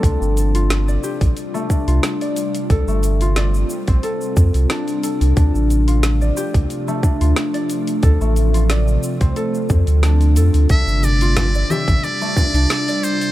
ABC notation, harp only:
X:1
M:4/4
L:1/16
Q:"Swing 16ths" 1/4=90
K:Cmix
V:1 name="Harp"
D z2 F z d G z2 A, D F z d z2 | A A, z F d z2 C A z3 D z A2 | D z2 F z d G z2 A, D F z d z2 | A A, z F d z2 C A z3 D z A2 |
D z2 F z d G z2 A, D D z d z2 |]